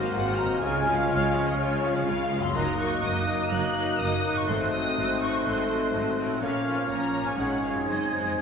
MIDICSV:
0, 0, Header, 1, 12, 480
1, 0, Start_track
1, 0, Key_signature, -5, "major"
1, 0, Tempo, 482703
1, 626, Time_signature, 4, 2, 24, 8
1, 7349, Tempo, 509338
1, 8316, End_track
2, 0, Start_track
2, 0, Title_t, "Flute section"
2, 0, Program_c, 0, 73
2, 0, Note_on_c, 0, 89, 53
2, 2250, Note_off_c, 0, 89, 0
2, 2535, Note_on_c, 0, 90, 53
2, 6349, Note_off_c, 0, 90, 0
2, 6384, Note_on_c, 0, 89, 43
2, 7329, Note_off_c, 0, 89, 0
2, 7337, Note_on_c, 0, 92, 43
2, 8316, Note_off_c, 0, 92, 0
2, 8316, End_track
3, 0, Start_track
3, 0, Title_t, "Violin section"
3, 0, Program_c, 1, 48
3, 26, Note_on_c, 1, 77, 60
3, 75, Note_off_c, 1, 77, 0
3, 135, Note_on_c, 1, 78, 66
3, 362, Note_on_c, 1, 82, 67
3, 376, Note_off_c, 1, 78, 0
3, 594, Note_on_c, 1, 80, 70
3, 614, Note_off_c, 1, 82, 0
3, 957, Note_on_c, 1, 77, 63
3, 962, Note_off_c, 1, 80, 0
3, 1079, Note_off_c, 1, 77, 0
3, 1091, Note_on_c, 1, 77, 66
3, 1448, Note_off_c, 1, 77, 0
3, 1459, Note_on_c, 1, 75, 64
3, 1576, Note_on_c, 1, 73, 69
3, 1580, Note_off_c, 1, 75, 0
3, 2047, Note_off_c, 1, 73, 0
3, 2062, Note_on_c, 1, 77, 72
3, 2414, Note_off_c, 1, 77, 0
3, 2415, Note_on_c, 1, 84, 65
3, 2537, Note_off_c, 1, 84, 0
3, 2548, Note_on_c, 1, 82, 65
3, 2784, Note_off_c, 1, 82, 0
3, 2784, Note_on_c, 1, 85, 65
3, 3017, Note_off_c, 1, 85, 0
3, 3017, Note_on_c, 1, 87, 59
3, 3498, Note_off_c, 1, 87, 0
3, 3499, Note_on_c, 1, 90, 72
3, 3975, Note_on_c, 1, 87, 74
3, 3979, Note_off_c, 1, 90, 0
3, 4339, Note_off_c, 1, 87, 0
3, 4342, Note_on_c, 1, 85, 65
3, 4456, Note_on_c, 1, 84, 71
3, 4463, Note_off_c, 1, 85, 0
3, 4535, Note_off_c, 1, 84, 0
3, 4695, Note_on_c, 1, 87, 64
3, 5172, Note_off_c, 1, 87, 0
3, 5185, Note_on_c, 1, 85, 65
3, 5419, Note_on_c, 1, 84, 60
3, 5422, Note_off_c, 1, 85, 0
3, 5896, Note_off_c, 1, 84, 0
3, 6376, Note_on_c, 1, 77, 62
3, 6829, Note_off_c, 1, 77, 0
3, 6866, Note_on_c, 1, 82, 62
3, 7228, Note_off_c, 1, 82, 0
3, 7230, Note_on_c, 1, 80, 56
3, 7347, Note_on_c, 1, 78, 55
3, 7352, Note_off_c, 1, 80, 0
3, 7582, Note_off_c, 1, 78, 0
3, 7583, Note_on_c, 1, 77, 49
3, 7659, Note_off_c, 1, 77, 0
3, 7817, Note_on_c, 1, 75, 49
3, 8178, Note_off_c, 1, 75, 0
3, 8193, Note_on_c, 1, 75, 44
3, 8242, Note_off_c, 1, 75, 0
3, 8316, End_track
4, 0, Start_track
4, 0, Title_t, "Oboe"
4, 0, Program_c, 2, 68
4, 0, Note_on_c, 2, 72, 51
4, 602, Note_off_c, 2, 72, 0
4, 608, Note_on_c, 2, 73, 53
4, 2223, Note_off_c, 2, 73, 0
4, 2534, Note_on_c, 2, 75, 52
4, 4420, Note_off_c, 2, 75, 0
4, 4471, Note_on_c, 2, 72, 47
4, 6356, Note_off_c, 2, 72, 0
4, 6395, Note_on_c, 2, 73, 44
4, 7814, Note_on_c, 2, 72, 35
4, 7828, Note_off_c, 2, 73, 0
4, 8315, Note_off_c, 2, 72, 0
4, 8316, End_track
5, 0, Start_track
5, 0, Title_t, "Violin section"
5, 0, Program_c, 3, 48
5, 0, Note_on_c, 3, 70, 44
5, 0, Note_on_c, 3, 75, 44
5, 141, Note_off_c, 3, 75, 0
5, 148, Note_off_c, 3, 70, 0
5, 165, Note_on_c, 3, 68, 43
5, 169, Note_on_c, 3, 72, 46
5, 396, Note_off_c, 3, 68, 0
5, 398, Note_off_c, 3, 72, 0
5, 410, Note_on_c, 3, 75, 45
5, 416, Note_on_c, 3, 70, 46
5, 638, Note_off_c, 3, 75, 0
5, 641, Note_off_c, 3, 70, 0
5, 648, Note_on_c, 3, 65, 49
5, 649, Note_on_c, 3, 73, 49
5, 861, Note_off_c, 3, 65, 0
5, 861, Note_off_c, 3, 73, 0
5, 888, Note_on_c, 3, 68, 43
5, 889, Note_on_c, 3, 77, 43
5, 1110, Note_on_c, 3, 73, 47
5, 1116, Note_off_c, 3, 68, 0
5, 1117, Note_off_c, 3, 77, 0
5, 1119, Note_on_c, 3, 65, 48
5, 1346, Note_off_c, 3, 73, 0
5, 1348, Note_on_c, 3, 77, 42
5, 1349, Note_on_c, 3, 68, 42
5, 1351, Note_off_c, 3, 65, 0
5, 1584, Note_off_c, 3, 68, 0
5, 1584, Note_off_c, 3, 77, 0
5, 1592, Note_on_c, 3, 65, 51
5, 1601, Note_on_c, 3, 73, 52
5, 1809, Note_off_c, 3, 65, 0
5, 1814, Note_off_c, 3, 73, 0
5, 1837, Note_on_c, 3, 68, 45
5, 1840, Note_on_c, 3, 77, 46
5, 2068, Note_off_c, 3, 68, 0
5, 2069, Note_off_c, 3, 77, 0
5, 2076, Note_on_c, 3, 65, 45
5, 2077, Note_on_c, 3, 73, 48
5, 2304, Note_on_c, 3, 77, 48
5, 2306, Note_on_c, 3, 68, 47
5, 2308, Note_off_c, 3, 65, 0
5, 2308, Note_off_c, 3, 73, 0
5, 2542, Note_off_c, 3, 77, 0
5, 2543, Note_off_c, 3, 68, 0
5, 2557, Note_on_c, 3, 75, 52
5, 2558, Note_on_c, 3, 70, 54
5, 2784, Note_off_c, 3, 75, 0
5, 2785, Note_off_c, 3, 70, 0
5, 2801, Note_on_c, 3, 70, 48
5, 2805, Note_on_c, 3, 75, 42
5, 3004, Note_off_c, 3, 70, 0
5, 3005, Note_off_c, 3, 75, 0
5, 3016, Note_on_c, 3, 70, 52
5, 3017, Note_on_c, 3, 75, 52
5, 3253, Note_off_c, 3, 70, 0
5, 3253, Note_off_c, 3, 75, 0
5, 3264, Note_on_c, 3, 70, 44
5, 3272, Note_on_c, 3, 75, 40
5, 3482, Note_off_c, 3, 75, 0
5, 3489, Note_off_c, 3, 70, 0
5, 3494, Note_on_c, 3, 75, 52
5, 3501, Note_on_c, 3, 70, 51
5, 3731, Note_off_c, 3, 75, 0
5, 3735, Note_off_c, 3, 70, 0
5, 3747, Note_on_c, 3, 75, 46
5, 3752, Note_on_c, 3, 70, 46
5, 3965, Note_off_c, 3, 75, 0
5, 3969, Note_off_c, 3, 70, 0
5, 3977, Note_on_c, 3, 75, 45
5, 3981, Note_on_c, 3, 70, 47
5, 4214, Note_off_c, 3, 75, 0
5, 4217, Note_off_c, 3, 70, 0
5, 4225, Note_on_c, 3, 75, 48
5, 4227, Note_on_c, 3, 70, 44
5, 4460, Note_off_c, 3, 75, 0
5, 4461, Note_off_c, 3, 70, 0
5, 4475, Note_on_c, 3, 75, 51
5, 4481, Note_on_c, 3, 69, 49
5, 4690, Note_off_c, 3, 69, 0
5, 4693, Note_off_c, 3, 75, 0
5, 4702, Note_on_c, 3, 69, 40
5, 4705, Note_on_c, 3, 75, 42
5, 4937, Note_off_c, 3, 69, 0
5, 4939, Note_off_c, 3, 75, 0
5, 4949, Note_on_c, 3, 69, 47
5, 4951, Note_on_c, 3, 75, 46
5, 5174, Note_off_c, 3, 69, 0
5, 5182, Note_off_c, 3, 75, 0
5, 5186, Note_on_c, 3, 69, 37
5, 5194, Note_on_c, 3, 75, 40
5, 5415, Note_off_c, 3, 75, 0
5, 5418, Note_off_c, 3, 69, 0
5, 5427, Note_on_c, 3, 75, 47
5, 5430, Note_on_c, 3, 69, 46
5, 5663, Note_off_c, 3, 69, 0
5, 5664, Note_off_c, 3, 75, 0
5, 5674, Note_on_c, 3, 75, 39
5, 5675, Note_on_c, 3, 69, 41
5, 5899, Note_off_c, 3, 75, 0
5, 5900, Note_off_c, 3, 69, 0
5, 5911, Note_on_c, 3, 75, 40
5, 5912, Note_on_c, 3, 69, 44
5, 6139, Note_off_c, 3, 75, 0
5, 6147, Note_off_c, 3, 69, 0
5, 6151, Note_on_c, 3, 75, 41
5, 6158, Note_on_c, 3, 69, 41
5, 6377, Note_on_c, 3, 65, 46
5, 6383, Note_on_c, 3, 73, 49
5, 6386, Note_off_c, 3, 75, 0
5, 6389, Note_off_c, 3, 69, 0
5, 6608, Note_off_c, 3, 73, 0
5, 6614, Note_off_c, 3, 65, 0
5, 6620, Note_on_c, 3, 73, 38
5, 6626, Note_on_c, 3, 65, 39
5, 6858, Note_off_c, 3, 65, 0
5, 6860, Note_off_c, 3, 73, 0
5, 6870, Note_on_c, 3, 65, 44
5, 6877, Note_on_c, 3, 73, 42
5, 7105, Note_off_c, 3, 65, 0
5, 7109, Note_off_c, 3, 73, 0
5, 7125, Note_on_c, 3, 65, 32
5, 7132, Note_on_c, 3, 73, 32
5, 7354, Note_off_c, 3, 65, 0
5, 7358, Note_off_c, 3, 73, 0
5, 7367, Note_on_c, 3, 65, 41
5, 7367, Note_on_c, 3, 73, 41
5, 7581, Note_off_c, 3, 65, 0
5, 7581, Note_off_c, 3, 73, 0
5, 7592, Note_on_c, 3, 65, 34
5, 7593, Note_on_c, 3, 73, 34
5, 7817, Note_on_c, 3, 68, 35
5, 7821, Note_off_c, 3, 65, 0
5, 7821, Note_on_c, 3, 72, 36
5, 7822, Note_off_c, 3, 73, 0
5, 8057, Note_off_c, 3, 68, 0
5, 8059, Note_off_c, 3, 72, 0
5, 8068, Note_on_c, 3, 68, 34
5, 8072, Note_on_c, 3, 72, 35
5, 8297, Note_off_c, 3, 68, 0
5, 8310, Note_off_c, 3, 72, 0
5, 8316, End_track
6, 0, Start_track
6, 0, Title_t, "Clarinet"
6, 0, Program_c, 4, 71
6, 0, Note_on_c, 4, 66, 53
6, 616, Note_off_c, 4, 66, 0
6, 622, Note_on_c, 4, 65, 55
6, 2231, Note_off_c, 4, 65, 0
6, 2546, Note_on_c, 4, 63, 51
6, 6392, Note_on_c, 4, 61, 46
6, 6406, Note_off_c, 4, 63, 0
6, 7817, Note_off_c, 4, 61, 0
6, 7823, Note_on_c, 4, 63, 37
6, 8302, Note_off_c, 4, 63, 0
6, 8316, End_track
7, 0, Start_track
7, 0, Title_t, "Harp"
7, 0, Program_c, 5, 46
7, 0, Note_on_c, 5, 44, 45
7, 0, Note_on_c, 5, 58, 38
7, 0, Note_on_c, 5, 60, 38
7, 0, Note_on_c, 5, 63, 38
7, 0, Note_on_c, 5, 66, 40
7, 0, Note_on_c, 5, 70, 40
7, 447, Note_on_c, 5, 49, 52
7, 495, Note_on_c, 5, 61, 40
7, 536, Note_on_c, 5, 65, 43
7, 554, Note_off_c, 5, 44, 0
7, 576, Note_off_c, 5, 60, 0
7, 577, Note_off_c, 5, 58, 0
7, 582, Note_on_c, 5, 68, 42
7, 596, Note_off_c, 5, 66, 0
7, 599, Note_off_c, 5, 63, 0
7, 621, Note_off_c, 5, 70, 0
7, 2367, Note_on_c, 5, 42, 54
7, 2414, Note_on_c, 5, 58, 43
7, 2459, Note_on_c, 5, 66, 44
7, 2469, Note_off_c, 5, 49, 0
7, 2493, Note_off_c, 5, 61, 0
7, 2501, Note_on_c, 5, 70, 43
7, 2514, Note_off_c, 5, 65, 0
7, 2537, Note_off_c, 5, 68, 0
7, 4296, Note_on_c, 5, 44, 47
7, 4338, Note_on_c, 5, 60, 40
7, 4372, Note_off_c, 5, 66, 0
7, 4384, Note_on_c, 5, 66, 40
7, 4395, Note_off_c, 5, 42, 0
7, 4419, Note_off_c, 5, 58, 0
7, 4430, Note_on_c, 5, 69, 40
7, 4462, Note_off_c, 5, 70, 0
7, 6218, Note_on_c, 5, 46, 42
7, 6260, Note_on_c, 5, 61, 37
7, 6307, Note_on_c, 5, 65, 36
7, 6327, Note_off_c, 5, 44, 0
7, 6348, Note_off_c, 5, 60, 0
7, 6354, Note_on_c, 5, 70, 35
7, 6371, Note_off_c, 5, 66, 0
7, 6394, Note_off_c, 5, 69, 0
7, 7173, Note_on_c, 5, 44, 36
7, 7205, Note_off_c, 5, 61, 0
7, 7263, Note_on_c, 5, 68, 32
7, 7285, Note_off_c, 5, 46, 0
7, 7305, Note_on_c, 5, 73, 29
7, 7352, Note_off_c, 5, 70, 0
7, 7647, Note_on_c, 5, 42, 33
7, 7691, Note_on_c, 5, 63, 28
7, 7723, Note_off_c, 5, 68, 0
7, 7734, Note_on_c, 5, 68, 28
7, 7757, Note_off_c, 5, 44, 0
7, 7775, Note_on_c, 5, 72, 29
7, 7802, Note_off_c, 5, 65, 0
7, 7819, Note_off_c, 5, 73, 0
7, 8143, Note_on_c, 5, 41, 35
7, 8188, Note_on_c, 5, 61, 27
7, 8219, Note_off_c, 5, 68, 0
7, 8230, Note_on_c, 5, 68, 29
7, 8243, Note_off_c, 5, 42, 0
7, 8266, Note_off_c, 5, 63, 0
7, 8270, Note_on_c, 5, 73, 29
7, 8308, Note_off_c, 5, 72, 0
7, 8316, Note_off_c, 5, 41, 0
7, 8316, Note_off_c, 5, 61, 0
7, 8316, Note_off_c, 5, 68, 0
7, 8316, Note_off_c, 5, 73, 0
7, 8316, End_track
8, 0, Start_track
8, 0, Title_t, "French horn section"
8, 0, Program_c, 6, 60
8, 0, Note_on_c, 6, 60, 54
8, 0, Note_on_c, 6, 66, 52
8, 609, Note_off_c, 6, 66, 0
8, 625, Note_on_c, 6, 61, 55
8, 625, Note_on_c, 6, 65, 53
8, 629, Note_off_c, 6, 60, 0
8, 2369, Note_off_c, 6, 61, 0
8, 2369, Note_off_c, 6, 65, 0
8, 2538, Note_on_c, 6, 63, 51
8, 2541, Note_on_c, 6, 58, 48
8, 2985, Note_off_c, 6, 63, 0
8, 2986, Note_off_c, 6, 58, 0
8, 3029, Note_on_c, 6, 58, 57
8, 3036, Note_on_c, 6, 63, 50
8, 3495, Note_off_c, 6, 58, 0
8, 3498, Note_off_c, 6, 63, 0
8, 3522, Note_on_c, 6, 63, 56
8, 3526, Note_on_c, 6, 58, 52
8, 3970, Note_off_c, 6, 58, 0
8, 3973, Note_off_c, 6, 63, 0
8, 3982, Note_on_c, 6, 58, 50
8, 3985, Note_on_c, 6, 63, 51
8, 4454, Note_off_c, 6, 58, 0
8, 4456, Note_off_c, 6, 63, 0
8, 4475, Note_on_c, 6, 60, 49
8, 4477, Note_on_c, 6, 57, 46
8, 5416, Note_off_c, 6, 57, 0
8, 5422, Note_off_c, 6, 60, 0
8, 5433, Note_on_c, 6, 57, 51
8, 5434, Note_on_c, 6, 60, 51
8, 6374, Note_off_c, 6, 57, 0
8, 6375, Note_off_c, 6, 60, 0
8, 6381, Note_on_c, 6, 58, 45
8, 6390, Note_on_c, 6, 61, 42
8, 6865, Note_off_c, 6, 58, 0
8, 6870, Note_off_c, 6, 61, 0
8, 6885, Note_on_c, 6, 58, 40
8, 6886, Note_on_c, 6, 61, 45
8, 7347, Note_off_c, 6, 61, 0
8, 7349, Note_off_c, 6, 58, 0
8, 7356, Note_on_c, 6, 56, 41
8, 7358, Note_on_c, 6, 61, 41
8, 7806, Note_off_c, 6, 56, 0
8, 7816, Note_off_c, 6, 61, 0
8, 7818, Note_on_c, 6, 56, 36
8, 7818, Note_on_c, 6, 60, 39
8, 8283, Note_off_c, 6, 56, 0
8, 8309, Note_off_c, 6, 60, 0
8, 8316, End_track
9, 0, Start_track
9, 0, Title_t, "Viola section"
9, 0, Program_c, 7, 48
9, 0, Note_on_c, 7, 54, 44
9, 0, Note_on_c, 7, 66, 46
9, 146, Note_off_c, 7, 54, 0
9, 147, Note_on_c, 7, 53, 44
9, 147, Note_on_c, 7, 65, 44
9, 149, Note_off_c, 7, 66, 0
9, 378, Note_on_c, 7, 54, 46
9, 379, Note_on_c, 7, 66, 43
9, 387, Note_off_c, 7, 53, 0
9, 387, Note_off_c, 7, 65, 0
9, 621, Note_on_c, 7, 56, 50
9, 622, Note_off_c, 7, 54, 0
9, 622, Note_off_c, 7, 66, 0
9, 623, Note_on_c, 7, 65, 48
9, 846, Note_off_c, 7, 56, 0
9, 848, Note_off_c, 7, 65, 0
9, 852, Note_on_c, 7, 53, 46
9, 855, Note_on_c, 7, 61, 43
9, 1095, Note_on_c, 7, 56, 49
9, 1098, Note_on_c, 7, 65, 47
9, 1099, Note_off_c, 7, 53, 0
9, 1100, Note_off_c, 7, 61, 0
9, 1337, Note_on_c, 7, 61, 45
9, 1338, Note_on_c, 7, 53, 47
9, 1339, Note_off_c, 7, 56, 0
9, 1340, Note_off_c, 7, 65, 0
9, 1571, Note_on_c, 7, 56, 49
9, 1574, Note_on_c, 7, 65, 50
9, 1578, Note_off_c, 7, 61, 0
9, 1579, Note_off_c, 7, 53, 0
9, 1798, Note_off_c, 7, 56, 0
9, 1799, Note_off_c, 7, 65, 0
9, 1815, Note_on_c, 7, 61, 46
9, 1817, Note_on_c, 7, 53, 48
9, 2051, Note_on_c, 7, 56, 47
9, 2052, Note_on_c, 7, 65, 47
9, 2057, Note_off_c, 7, 61, 0
9, 2058, Note_off_c, 7, 53, 0
9, 2295, Note_off_c, 7, 56, 0
9, 2295, Note_off_c, 7, 65, 0
9, 2295, Note_on_c, 7, 53, 46
9, 2299, Note_on_c, 7, 61, 49
9, 2538, Note_off_c, 7, 53, 0
9, 2540, Note_off_c, 7, 61, 0
9, 2544, Note_on_c, 7, 63, 52
9, 2545, Note_on_c, 7, 54, 54
9, 2766, Note_off_c, 7, 54, 0
9, 2766, Note_off_c, 7, 63, 0
9, 2777, Note_on_c, 7, 54, 49
9, 2777, Note_on_c, 7, 63, 44
9, 3001, Note_off_c, 7, 63, 0
9, 3004, Note_off_c, 7, 54, 0
9, 3013, Note_on_c, 7, 63, 52
9, 3016, Note_on_c, 7, 54, 47
9, 3244, Note_off_c, 7, 63, 0
9, 3246, Note_off_c, 7, 54, 0
9, 3256, Note_on_c, 7, 63, 44
9, 3258, Note_on_c, 7, 54, 47
9, 3484, Note_off_c, 7, 54, 0
9, 3484, Note_off_c, 7, 63, 0
9, 3496, Note_on_c, 7, 54, 50
9, 3496, Note_on_c, 7, 63, 50
9, 3732, Note_off_c, 7, 63, 0
9, 3733, Note_off_c, 7, 54, 0
9, 3747, Note_on_c, 7, 54, 46
9, 3748, Note_on_c, 7, 63, 46
9, 3973, Note_off_c, 7, 63, 0
9, 3979, Note_off_c, 7, 54, 0
9, 3985, Note_on_c, 7, 63, 46
9, 3990, Note_on_c, 7, 54, 49
9, 4219, Note_off_c, 7, 63, 0
9, 4221, Note_off_c, 7, 54, 0
9, 4232, Note_on_c, 7, 63, 47
9, 4234, Note_on_c, 7, 54, 45
9, 4445, Note_off_c, 7, 54, 0
9, 4457, Note_on_c, 7, 54, 50
9, 4459, Note_on_c, 7, 60, 48
9, 4463, Note_off_c, 7, 63, 0
9, 4690, Note_off_c, 7, 60, 0
9, 4697, Note_off_c, 7, 54, 0
9, 4702, Note_on_c, 7, 60, 42
9, 4709, Note_on_c, 7, 54, 43
9, 4932, Note_off_c, 7, 60, 0
9, 4936, Note_off_c, 7, 54, 0
9, 4944, Note_on_c, 7, 60, 47
9, 4948, Note_on_c, 7, 54, 47
9, 5174, Note_off_c, 7, 60, 0
9, 5175, Note_off_c, 7, 54, 0
9, 5186, Note_on_c, 7, 60, 43
9, 5187, Note_on_c, 7, 54, 46
9, 5412, Note_off_c, 7, 54, 0
9, 5414, Note_off_c, 7, 60, 0
9, 5424, Note_on_c, 7, 54, 48
9, 5426, Note_on_c, 7, 60, 49
9, 5641, Note_off_c, 7, 60, 0
9, 5649, Note_off_c, 7, 54, 0
9, 5652, Note_on_c, 7, 60, 43
9, 5661, Note_on_c, 7, 54, 42
9, 5889, Note_off_c, 7, 60, 0
9, 5893, Note_off_c, 7, 54, 0
9, 5901, Note_on_c, 7, 60, 44
9, 5905, Note_on_c, 7, 54, 42
9, 6132, Note_off_c, 7, 60, 0
9, 6133, Note_off_c, 7, 54, 0
9, 6144, Note_on_c, 7, 60, 44
9, 6145, Note_on_c, 7, 54, 41
9, 6382, Note_off_c, 7, 60, 0
9, 6383, Note_off_c, 7, 54, 0
9, 6397, Note_on_c, 7, 53, 43
9, 6398, Note_on_c, 7, 61, 43
9, 6619, Note_off_c, 7, 61, 0
9, 6620, Note_off_c, 7, 53, 0
9, 6631, Note_on_c, 7, 61, 42
9, 6632, Note_on_c, 7, 53, 38
9, 6854, Note_off_c, 7, 61, 0
9, 6855, Note_off_c, 7, 53, 0
9, 6866, Note_on_c, 7, 61, 39
9, 6867, Note_on_c, 7, 53, 42
9, 7087, Note_off_c, 7, 53, 0
9, 7090, Note_off_c, 7, 61, 0
9, 7099, Note_on_c, 7, 53, 36
9, 7102, Note_on_c, 7, 61, 37
9, 7334, Note_off_c, 7, 61, 0
9, 7341, Note_off_c, 7, 53, 0
9, 7346, Note_on_c, 7, 61, 37
9, 7347, Note_on_c, 7, 56, 38
9, 7549, Note_off_c, 7, 61, 0
9, 7553, Note_off_c, 7, 56, 0
9, 7560, Note_on_c, 7, 61, 37
9, 7564, Note_on_c, 7, 56, 37
9, 7800, Note_off_c, 7, 56, 0
9, 7805, Note_off_c, 7, 61, 0
9, 7812, Note_on_c, 7, 56, 34
9, 7812, Note_on_c, 7, 63, 32
9, 8047, Note_off_c, 7, 63, 0
9, 8048, Note_off_c, 7, 56, 0
9, 8059, Note_on_c, 7, 63, 32
9, 8060, Note_on_c, 7, 56, 33
9, 8291, Note_off_c, 7, 56, 0
9, 8303, Note_off_c, 7, 63, 0
9, 8316, End_track
10, 0, Start_track
10, 0, Title_t, "Bassoon"
10, 0, Program_c, 8, 70
10, 0, Note_on_c, 8, 58, 53
10, 625, Note_on_c, 8, 56, 57
10, 640, Note_off_c, 8, 58, 0
10, 2265, Note_off_c, 8, 56, 0
10, 2539, Note_on_c, 8, 58, 59
10, 4455, Note_on_c, 8, 57, 55
10, 4470, Note_off_c, 8, 58, 0
10, 6385, Note_on_c, 8, 58, 45
10, 6400, Note_off_c, 8, 57, 0
10, 7344, Note_off_c, 8, 58, 0
10, 7350, Note_on_c, 8, 56, 46
10, 8316, Note_off_c, 8, 56, 0
10, 8316, End_track
11, 0, Start_track
11, 0, Title_t, "Cello section"
11, 0, Program_c, 10, 48
11, 134, Note_on_c, 10, 44, 55
11, 563, Note_off_c, 10, 44, 0
11, 614, Note_on_c, 10, 49, 60
11, 1043, Note_off_c, 10, 49, 0
11, 1097, Note_on_c, 10, 49, 55
11, 1522, Note_off_c, 10, 49, 0
11, 1572, Note_on_c, 10, 49, 58
11, 1998, Note_off_c, 10, 49, 0
11, 2054, Note_on_c, 10, 49, 54
11, 2480, Note_off_c, 10, 49, 0
11, 2537, Note_on_c, 10, 42, 66
11, 2940, Note_off_c, 10, 42, 0
11, 3015, Note_on_c, 10, 42, 58
11, 3418, Note_off_c, 10, 42, 0
11, 3499, Note_on_c, 10, 42, 62
11, 3901, Note_off_c, 10, 42, 0
11, 3986, Note_on_c, 10, 42, 55
11, 4387, Note_off_c, 10, 42, 0
11, 4466, Note_on_c, 10, 44, 66
11, 4869, Note_off_c, 10, 44, 0
11, 4948, Note_on_c, 10, 44, 59
11, 5351, Note_off_c, 10, 44, 0
11, 5429, Note_on_c, 10, 44, 55
11, 5832, Note_off_c, 10, 44, 0
11, 5912, Note_on_c, 10, 44, 55
11, 6313, Note_off_c, 10, 44, 0
11, 6387, Note_on_c, 10, 46, 57
11, 6790, Note_off_c, 10, 46, 0
11, 6864, Note_on_c, 10, 46, 51
11, 7270, Note_off_c, 10, 46, 0
11, 7341, Note_on_c, 10, 44, 48
11, 7739, Note_off_c, 10, 44, 0
11, 7816, Note_on_c, 10, 42, 46
11, 8227, Note_off_c, 10, 42, 0
11, 8316, End_track
12, 0, Start_track
12, 0, Title_t, "Double bass section"
12, 0, Program_c, 11, 48
12, 146, Note_on_c, 11, 32, 53
12, 569, Note_off_c, 11, 32, 0
12, 620, Note_on_c, 11, 37, 58
12, 1046, Note_off_c, 11, 37, 0
12, 1102, Note_on_c, 11, 37, 60
12, 1524, Note_off_c, 11, 37, 0
12, 1574, Note_on_c, 11, 37, 61
12, 1999, Note_off_c, 11, 37, 0
12, 2060, Note_on_c, 11, 37, 61
12, 2484, Note_off_c, 11, 37, 0
12, 2544, Note_on_c, 11, 30, 64
12, 2943, Note_off_c, 11, 30, 0
12, 3029, Note_on_c, 11, 30, 65
12, 3426, Note_off_c, 11, 30, 0
12, 3505, Note_on_c, 11, 30, 59
12, 3904, Note_off_c, 11, 30, 0
12, 3985, Note_on_c, 11, 30, 62
12, 4387, Note_off_c, 11, 30, 0
12, 4469, Note_on_c, 11, 32, 63
12, 4871, Note_off_c, 11, 32, 0
12, 4949, Note_on_c, 11, 32, 59
12, 5351, Note_off_c, 11, 32, 0
12, 5432, Note_on_c, 11, 32, 56
12, 5834, Note_off_c, 11, 32, 0
12, 5914, Note_on_c, 11, 32, 51
12, 6315, Note_off_c, 11, 32, 0
12, 6391, Note_on_c, 11, 34, 56
12, 6792, Note_off_c, 11, 34, 0
12, 6875, Note_on_c, 11, 34, 50
12, 7276, Note_off_c, 11, 34, 0
12, 7355, Note_on_c, 11, 32, 49
12, 7746, Note_off_c, 11, 32, 0
12, 7825, Note_on_c, 11, 30, 42
12, 8232, Note_off_c, 11, 30, 0
12, 8316, End_track
0, 0, End_of_file